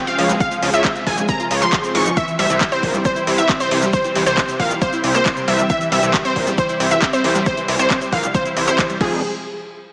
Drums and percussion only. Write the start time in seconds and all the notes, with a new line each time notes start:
0.07 closed hi-hat, shaker
0.18 open hi-hat
0.30 closed hi-hat, shaker
0.40 kick, closed hi-hat, shaker
0.52 closed hi-hat, shaker
0.62 open hi-hat
0.74 closed hi-hat, shaker
0.85 kick, clap, closed hi-hat, shaker
0.96 closed hi-hat, shaker
1.07 kick, open hi-hat
1.18 closed hi-hat, shaker
1.29 kick, closed hi-hat, shaker
1.40 closed hi-hat, shaker
1.51 open hi-hat
1.62 clap, closed hi-hat, shaker
1.73 kick, clap, closed hi-hat, shaker
1.84 closed hi-hat, shaker
1.95 open hi-hat
2.06 closed hi-hat, shaker
2.17 kick, closed hi-hat, shaker
2.28 closed hi-hat, shaker
2.39 open hi-hat
2.50 closed hi-hat, shaker
2.61 kick, clap, closed hi-hat, shaker
2.72 closed hi-hat, shaker
2.83 kick, open hi-hat
2.94 closed hi-hat, shaker
3.05 kick, closed hi-hat, shaker
3.16 closed hi-hat, shaker
3.27 open hi-hat
3.38 closed hi-hat, shaker
3.49 kick, clap, closed hi-hat, shaker
3.60 closed hi-hat, shaker
3.71 open hi-hat
3.82 closed hi-hat, shaker
3.93 kick, closed hi-hat, shaker
4.04 closed hi-hat, shaker
4.15 open hi-hat
4.27 closed hi-hat, shaker
4.37 kick, clap, closed hi-hat, shaker
4.49 closed hi-hat, shaker
4.60 kick, open hi-hat
4.71 closed hi-hat, shaker
4.82 kick, closed hi-hat, shaker
4.93 closed hi-hat, shaker
5.04 open hi-hat
5.15 clap, closed hi-hat, shaker
5.26 kick, clap, closed hi-hat, shaker
5.37 closed hi-hat, shaker
5.48 open hi-hat
5.59 closed hi-hat, shaker
5.70 kick, closed hi-hat, shaker
5.81 closed hi-hat, shaker
5.92 open hi-hat
6.03 closed hi-hat, shaker
6.14 kick, clap, closed hi-hat, shaker
6.25 closed hi-hat, shaker
6.36 kick, open hi-hat
6.47 closed hi-hat, shaker
6.58 kick, closed hi-hat, shaker
6.69 closed hi-hat, shaker
6.80 open hi-hat
6.91 closed hi-hat, shaker
7.02 kick, clap, closed hi-hat, shaker
7.13 closed hi-hat, shaker
7.24 open hi-hat
7.35 closed hi-hat, shaker
7.46 kick, closed hi-hat, shaker
7.57 closed hi-hat, shaker
7.68 open hi-hat
7.79 closed hi-hat, shaker
7.90 kick, clap, closed hi-hat, shaker
8.01 closed hi-hat, shaker
8.12 kick, open hi-hat
8.24 closed hi-hat, shaker
8.35 kick, closed hi-hat, shaker
8.46 closed hi-hat, shaker
8.57 open hi-hat
8.68 clap, closed hi-hat, shaker
8.79 kick, clap, closed hi-hat, shaker
8.90 closed hi-hat, shaker
9.01 kick, crash